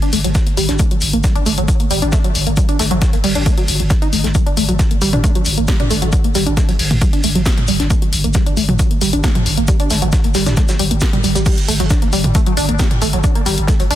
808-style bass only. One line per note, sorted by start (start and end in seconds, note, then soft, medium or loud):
0.13 0.24 G1 loud
0.24 0.35 G1 medium
0.57 0.68 G1 loud
0.69 0.79 G1 medium
1.02 1.13 G1 loud
1.13 1.24 G1 medium
1.36 1.46 G1 medium
1.46 1.57 G1 loud
1.58 1.68 G1 medium
1.91 2.02 G1 loud
2.02 2.13 G1 medium
2.35 2.46 G1 loud
2.47 2.57 G1 medium
2.79 2.90 G1 loud
2.91 3.02 G1 medium
3.13 3.23 G1 medium
3.24 3.35 G1 loud
3.35 3.46 G1 medium
3.68 3.79 G1 loud
3.80 3.90 G1 medium
4.13 4.24 G1 loud
4.24 4.35 G1 medium
4.57 4.68 G1 loud
4.69 4.79 G1 medium
4.91 5.01 G1 medium
5.02 5.13 G1 medium
5.13 5.24 G1 medium
5.46 5.57 G1 loud
5.58 5.68 G1 medium
5.91 6.02 G1 loud
6.02 6.13 G1 medium
6.35 6.46 G1 loud
6.47 6.57 G1 medium
6.69 6.79 G1 medium
6.79 6.90 G1 medium
6.91 7.02 G1 medium
7.24 7.35 G1 loud
7.35 7.46 G1 medium
7.68 7.79 G1 loud
7.80 7.90 G1 medium
8.13 8.24 G1 loud
8.24 8.35 G1 medium
8.47 8.57 G1 medium
8.57 8.68 G1 medium
8.69 8.79 G1 medium
9.02 9.13 G1 loud
9.13 9.24 G1 medium
9.46 9.57 G1 loud
9.57 9.68 G1 medium
9.90 10.01 G1 loud
10.02 10.13 G1 medium
10.24 10.34 G1 medium
10.35 10.46 G1 loud
10.46 10.57 G1 medium
10.79 10.90 G1 loud
10.91 11.01 G1 medium
11.24 11.35 G1 loud
11.35 11.46 G1 medium
11.68 11.79 G1 loud
11.80 11.90 G1 medium
12.02 12.12 G1 medium
12.13 12.24 G1 medium
12.24 12.35 G1 medium
12.57 12.68 G1 loud
12.69 12.79 G1 medium
13.02 13.13 G1 loud
13.13 13.24 G1 medium
13.46 13.57 G1 loud
13.58 13.68 G1 medium
13.80 13.90 G1 medium
13.91 13.95 G1 loud